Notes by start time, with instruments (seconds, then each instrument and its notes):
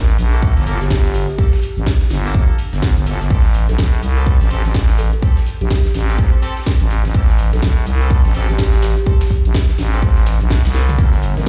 Already playing: fm bass A1
0.18 fm bass A#1, open hi-hat, shaker
0.33 horn section A#3 G4 A4, shaker
0.42 kick, shaker
0.57 fm bass G1, snare
0.66 fm bass G1, horn section A#3 G4 A4, open hi-hat, shaker
0.81 fm bass G1, kalimba G4, snare, shaker
0.90 fm bass G1, kalimba G4, kick, snare, open hi-hat, shaker
1.05 snare
1.14 kalimba G4, open hi-hat, shaker
1.29 kalimba G4, shaker
1.38 horn section A#3 G4 A4, kick, shaker
1.53 snare
1.62 open hi-hat, shaker
1.77 fm bass A1, shaker
1.86 kick, snare, shaker
2.01 snare
2.10 fm bass G1, kalimba D4, snare, open hi-hat, shaker
2.25 horn section A#3 G4 A4, kalimba D4, snare, shaker
2.34 fm bass G1, kick, shaker
2.58 open hi-hat, shaker
2.73 fm bass G1, snare, shaker
2.82 kick, snare, shaker
2.97 fm bass G1
3.06 fm bass G1, horn section A#3 G4 A4, open hi-hat, shaker
3.21 fm bass G1, snare, shaker
3.30 fm bass A1, horn section C4 G4 A4, kick, closed hi-hat, shaker
3.45 snare
3.54 open hi-hat, shaker
3.69 fm bass A#1, kalimba A4, snare, closed hi-hat, shaker
3.78 fm bass A#1, kalimba A4, kick, snare, closed hi-hat, shaker
4.02 fm bass C2, open hi-hat, shaker
4.17 horn section C4 G4 A4, closed hi-hat, shaker
4.26 kick, closed hi-hat, shaker
4.41 fm bass A1, snare, closed hi-hat
4.50 fm bass A1, horn section C4 G4 A4, open hi-hat, shaker
4.65 fm bass A1, snare, closed hi-hat, shaker
4.74 fm bass A1, kick, snare, closed hi-hat, open hi-hat, shaker
4.89 snare, closed hi-hat
4.98 kalimba A4, open hi-hat, shaker
5.12 kalimba A4, closed hi-hat, shaker
5.22 horn section C4 G4 A4, kick, closed hi-hat, shaker
5.37 snare, closed hi-hat
5.46 open hi-hat, shaker
5.61 fm bass A#1, kalimba G4, closed hi-hat, shaker
5.70 kick, snare, closed hi-hat, shaker
5.85 snare, closed hi-hat
5.94 fm bass A1, snare, open hi-hat, shaker
6.09 horn section C4 G4 A4, snare, closed hi-hat, shaker
6.18 fm bass A1, kick, closed hi-hat, shaker
6.33 closed hi-hat
6.42 horn section C4 G4 A4, open hi-hat, shaker
6.57 snare, closed hi-hat, shaker
6.66 kick, snare, closed hi-hat, shaker
6.81 fm bass A1, closed hi-hat
6.90 open hi-hat, shaker
7.05 fm bass A1, snare, closed hi-hat, shaker
7.14 fm bass A1, horn section C4 G4 A4, kick, closed hi-hat, shaker
7.29 snare
7.38 open hi-hat, shaker
7.53 fm bass A#1, kalimba A4, snare, closed hi-hat, shaker
7.62 fm bass A#1, kalimba A4, kick, snare, closed hi-hat, shaker
7.86 fm bass C2, open hi-hat, shaker
8.01 horn section C4 G4 A4, closed hi-hat, shaker
8.10 kick, closed hi-hat, shaker
8.25 fm bass A1, snare, closed hi-hat
8.34 fm bass A1, horn section C4 G4 A4, open hi-hat, shaker
8.49 fm bass A1, kalimba G4, snare, closed hi-hat, shaker
8.58 fm bass A1, kalimba G4, kick, snare, closed hi-hat, open hi-hat, shaker
8.73 snare, closed hi-hat
8.82 kalimba G4, snare, open hi-hat, shaker
8.97 kalimba G4, closed hi-hat, shaker
9.06 horn section C4 G4 A4, kick, closed hi-hat, shaker
9.21 snare, closed hi-hat, shaker
9.30 kick, open hi-hat, shaker
9.44 fm bass A#1, closed hi-hat, shaker
9.54 kick, snare, closed hi-hat, shaker
9.69 snare, closed hi-hat
9.78 fm bass A1, kalimba D4, snare, open hi-hat, shaker
9.92 horn section C4 G4 A4, kalimba D4, snare, closed hi-hat, shaker
10.02 fm bass A1, kick, closed hi-hat, shaker
10.17 snare, closed hi-hat
10.26 snare, open hi-hat, shaker
10.41 fm bass A#1, closed hi-hat, shaker
10.50 kick, snare, closed hi-hat, shaker
10.65 fm bass C2, snare, closed hi-hat, shaker
10.74 horn section C4 G4 A4, snare, open hi-hat, shaker
10.89 closed hi-hat, mid tom, shaker
10.98 fm bass G1, analog synth pad G3 A#3 D4 A4, horn section A#3 G4 A4, kick, closed hi-hat, shaker
11.13 snare
11.22 open hi-hat, shaker
11.37 fm bass A1, kalimba A#4, snare, closed hi-hat, shaker